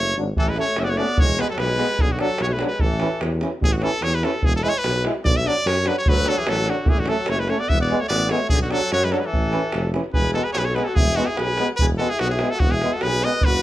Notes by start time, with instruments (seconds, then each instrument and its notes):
Already playing: tuba F#1, alto saxophone A3, trumpet C#5
0.16 tuba G#1, euphonium F#3, trombone D4
0.36 tuba A1, alto saxophone E3, trumpet A4, davul low
0.48 alto saxophone G#3, trumpet B4
0.56 euphonium A3, alto saxophone A3, trombone C#4, trumpet C#5, davul high
0.76 tuba F#1, alto saxophone A3, trumpet E5, davul high
0.81 alto saxophone C#4, trumpet D5
0.85 alto saxophone B3, davul high
0.89 alto saxophone A3, trumpet C#5
0.97 euphonium A3, alto saxophone B3, trombone C#4, trumpet D5, davul high
1.08 davul high
1.17 tuba E1, alto saxophone G#3, trumpet C#5, davul low
1.38 euphonium G#3, trombone B3, trumpet B4, davul high
1.42 alto saxophone G#3
1.50 alto saxophone F#3, trumpet A4
1.58 tuba B1, alto saxophone G#3, trumpet B4, davul high
1.70 davul high
1.78 euphonium G#3, trombone B3, davul high
1.89 davul high
1.98 tuba B1, alto saxophone D3, trumpet G#4, davul low
2.11 alto saxophone D3, trumpet F#4
2.19 euphonium F#3, alto saxophone F#3, trombone D4, trumpet A4, davul high
2.38 tuba B1, alto saxophone F#3, trumpet C#5, davul high
2.48 alto saxophone A3, trumpet C#5, davul high
2.53 alto saxophone G#3, trumpet B4
2.59 euphonium F#3, trombone D4, davul high
2.66 alto saxophone G#3, trumpet B4, davul high
2.79 tuba A1, trumpet A4, davul low
2.84 alto saxophone E3
3.00 euphonium E3, trombone C#4, davul high
3.21 tuba E2, davul high
3.32 davul high
3.41 euphonium E3, trombone C#4, davul high
3.61 tuba A1, trumpet G#4, davul low
3.73 trumpet F#4
3.77 trombone C#4, trumpet F#4
3.82 euphonium E3, trumpet A4, davul high
4.02 tuba E2, trumpet C#5, davul high
4.13 trumpet B4, davul high
4.23 euphonium E3, trombone C#4, trumpet A4, davul high
4.33 davul high
4.43 tuba E1, trumpet G#4, davul low
4.56 trumpet A4
4.63 euphonium G#3, trombone E4, trumpet B4, davul high
4.69 trumpet C#5
4.78 trumpet B4
4.84 tuba B1, davul high
4.95 davul high
5.05 euphonium G#3, trombone E4, davul high
5.14 davul high
5.24 tuba B1, trumpet D5, davul low
5.37 trumpet E5
5.46 euphonium F#3, trombone D4, trumpet D5, davul high
5.65 tuba F#2, trumpet C#5, davul high
5.77 davul high
5.86 euphonium F#3, trombone D4, trumpet B4, davul high
5.98 trumpet C#5
6.06 tuba D2, alto saxophone F#3, trumpet B4, davul low
6.26 alto saxophone F#3, euphonium F#3, trombone D4, trumpet A4, davul high
6.38 alto saxophone E3, trumpet G#4
6.47 tuba A1, alto saxophone F#3, trumpet A4, davul high
6.57 davul high
6.66 alto saxophone D3, euphonium F#3, trombone D4, trumpet F#4, davul high
6.86 tuba A1, alto saxophone E3, trumpet G#4, davul low
6.98 alto saxophone D3, trumpet F#4
7.06 alto saxophone F#3, euphonium A3, trombone C#4, trumpet A4, davul high
7.26 tuba F#1, alto saxophone A3, trumpet C#5, davul high
7.37 alto saxophone G#3, trumpet B4, davul high
7.47 alto saxophone A3, euphonium A3, trombone C#4, trumpet C#5, davul high
7.58 alto saxophone B3, trumpet D5, davul high
7.68 tuba E1, alto saxophone B3, trumpet E5, davul low
7.79 alto saxophone B3, trumpet D5
7.88 euphonium G#3, trombone B3, davul high
8.00 alto saxophone A3, trumpet C#5
8.08 tuba A1, alto saxophone B3, trumpet D5, davul high
8.20 davul high
8.29 euphonium G#3, alto saxophone A3, trombone B3, trumpet C#5, davul high
8.40 davul high
8.49 tuba B1, alto saxophone D3, trumpet G#4, davul low
8.62 alto saxophone D3, trumpet F#4
8.70 alto saxophone F#3, euphonium F#3, trombone D4, trumpet A4, davul high
8.92 tuba F#2, alto saxophone F#3, trumpet C#5, davul high
9.03 alto saxophone G#3, trumpet B4, davul high
9.11 alto saxophone F#3, euphonium F#3, trombone D4, trumpet A4, davul high
9.19 alto saxophone G#3, trumpet B4
9.24 alto saxophone E3, trumpet A4, davul high
9.32 tuba A1, davul low
9.52 euphonium E3, trombone C#4, davul high
9.64 davul high
9.72 tuba F1, davul high
9.93 euphonium E3, trombone C#4, davul high
10.04 davul high
10.13 tuba E1, alto saxophone G#4, trumpet B4, davul low
10.24 davul high
10.34 euphonium G#3, trombone B3, alto saxophone F#4, trumpet A4, davul high
10.44 alto saxophone G#4, trumpet B4
10.53 tuba B1, alto saxophone G#4, trumpet C#5, davul high
10.58 alto saxophone G#4, trumpet B4
10.65 alto saxophone A4, trumpet C#5, davul high
10.74 euphonium G#3, trombone B3, alto saxophone G#4, trumpet B4, davul high
10.84 alto saxophone F#4, trumpet A4
10.95 tuba E1, alto saxophone E4, trumpet G#4, davul low
11.08 davul high
11.16 euphonium G#3, trombone B3, alto saxophone D#4, trumpet F#4, davul high
11.23 alto saxophone F#4, trumpet G#4 A4
11.28 alto saxophone E4
11.36 tuba B1, alto saxophone G#4, trumpet B4, davul high
11.48 davul high
11.58 euphonium G#3, trombone B3, davul high
11.77 tuba E1, trumpet B4, davul low
11.81 alto saxophone G#4
11.91 davul high
11.98 euphonium G#3, trombone B3, alto saxophone F#4, trumpet A4, davul high
12.10 alto saxophone E4, trumpet G#4
12.19 tuba B1, alto saxophone B3, trumpet F#4, davul high
12.30 alto saxophone E4, trumpet G#4, davul high
12.39 euphonium G#3, trombone B3, davul high
12.50 alto saxophone F#4, trumpet A4
12.60 tuba E1, alto saxophone B3, trumpet F#4, davul low
12.71 alto saxophone E4, trumpet G#4
12.81 euphonium G#3, trombone B3, davul high
12.91 alto saxophone F#4, trumpet A4, davul high
13.01 tuba B1, trumpet B4, davul high
13.06 alto saxophone G#4
13.13 davul high
13.22 euphonium G#3, trombone B3, alto saxophone B4, trumpet D#5, davul high
13.33 davul high
13.41 tuba F#1, trumpet B4, davul low
13.47 alto saxophone F#4